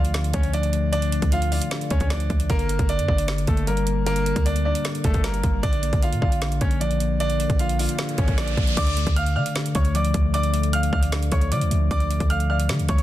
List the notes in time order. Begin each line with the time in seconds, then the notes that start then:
Already playing: D2 D3 F3 A3 F4 D5 F5
0.05 closed hi-hat
0.14 D3, snare, closed hi-hat
0.24 closed hi-hat
0.34 D2 A3 C#4 C#5, kick, closed hi-hat
0.43 closed hi-hat
0.54 F3 D4 D5, closed hi-hat
0.63 closed hi-hat
0.73 A3, closed hi-hat
0.93 D3 D4 D5, closed hi-hat
1.02 closed hi-hat
1.12 A3, closed hi-hat
1.22 D2, kick, closed hi-hat
1.32 F4 F5, closed hi-hat
1.42 closed hi-hat
1.52 F4 D5 F5, open hi-hat
1.62 closed hi-hat
1.71 D3, snare, closed hi-hat
1.81 closed hi-hat
1.90 D2 A3 C#4 C#5, kick, closed hi-hat
2.00 D2, kick, closed hi-hat
2.10 F3 D4 D5, snare, closed hi-hat
2.20 closed hi-hat
2.30 D2 A3, kick, closed hi-hat
2.40 closed hi-hat
2.50 G1 D3 A#3 A#4, kick, closed hi-hat
2.59 closed hi-hat
2.69 A#3, closed hi-hat
2.79 G1, kick, closed hi-hat
2.89 D4 D5, closed hi-hat
2.99 G2, closed hi-hat
3.08 G1 D4 D5, kick
3.18 closed hi-hat
3.28 D3, snare, closed hi-hat
3.38 closed hi-hat
3.47 G1 A3 A#3 A4, kick, closed hi-hat
3.57 closed hi-hat
3.67 G3 A#3 A#4, closed hi-hat
3.77 closed hi-hat
3.87 A#3, closed hi-hat
4.06 D3 A#3 A#4, closed hi-hat
4.16 closed hi-hat
4.26 A#3, closed hi-hat
4.36 D2, kick, closed hi-hat
4.46 D4 D5, closed hi-hat
4.56 closed hi-hat
4.65 D4 D5
4.75 closed hi-hat
4.84 D3, snare, closed hi-hat
4.95 closed hi-hat
5.04 G1 A3 A#3 A4, kick, closed hi-hat
5.14 G1, kick, closed hi-hat
5.23 G3 A#3 A#4, snare, closed hi-hat
5.34 closed hi-hat
5.43 G1 A#3, kick, closed hi-hat
5.63 A#1 D3 D4 D5, kick, closed hi-hat
5.73 closed hi-hat
5.82 A#3, closed hi-hat
5.93 A#1, kick, closed hi-hat
6.03 F4 F5, closed hi-hat
6.12 A#2, closed hi-hat
6.22 A#1 F4 D5 F5, kick
6.32 closed hi-hat
6.41 D3, snare, closed hi-hat
6.52 closed hi-hat
6.61 A#1 A#3 C#4 C#5, kick, closed hi-hat
6.71 closed hi-hat
6.81 F3 D4 D5, closed hi-hat
6.91 closed hi-hat
7.00 A#3, closed hi-hat
7.20 D3 D4 D5, closed hi-hat, riser
7.30 closed hi-hat
7.40 A#3, closed hi-hat
7.50 A#1, kick, closed hi-hat
7.59 F4 F5, closed hi-hat
7.69 closed hi-hat
7.79 F4 D5 F5, open hi-hat
7.89 closed hi-hat
7.98 D3, snare, closed hi-hat
8.09 closed hi-hat
8.18 A#1 A#3 C#4 C#5, kick, closed hi-hat
8.28 A#1, kick, closed hi-hat
8.38 F3 D4 D5, snare, closed hi-hat
8.48 closed hi-hat
8.57 A#1 A#3, kick, closed hi-hat
8.67 closed hi-hat
8.77 D2 D3 D5 D6, kick, closed hi-hat, crash
8.87 closed hi-hat
8.97 A3, closed hi-hat
9.07 D2, kick, closed hi-hat
9.16 F5 F6, closed hi-hat
9.26 closed hi-hat
9.36 D3 D5 F5 F6
9.46 closed hi-hat
9.55 D3, snare, closed hi-hat
9.66 closed hi-hat
9.75 D2 A3 C#5 C#6, kick, closed hi-hat
9.85 closed hi-hat
9.94 F3 D5 D6, closed hi-hat
10.05 closed hi-hat
10.14 D2 A3, kick, closed hi-hat
10.34 D3 D5 D6, closed hi-hat
10.43 closed hi-hat
10.53 A3, closed hi-hat
10.63 closed hi-hat
10.73 F5 F6, closed hi-hat
10.83 closed hi-hat
10.93 D2 D5 F5 F6, kick
11.03 closed hi-hat
11.12 D3, snare, closed hi-hat
11.23 closed hi-hat
11.32 D2 A3 C#5 C#6, kick, closed hi-hat
11.41 closed hi-hat
11.52 D3 F3 D5 D6, closed hi-hat
11.61 D2, closed hi-hat
11.71 D2 A3, closed hi-hat
11.91 D2 D3 D5 D6, kick, closed hi-hat
12.00 closed hi-hat
12.10 A3, closed hi-hat
12.20 D2, kick, closed hi-hat
12.30 F5 F6, closed hi-hat
12.40 closed hi-hat
12.50 D5 F5 F6
12.60 closed hi-hat
12.69 D3, snare, closed hi-hat
12.79 D2, closed hi-hat
12.89 D2 A3 C#5 C#6, kick, closed hi-hat
12.98 closed hi-hat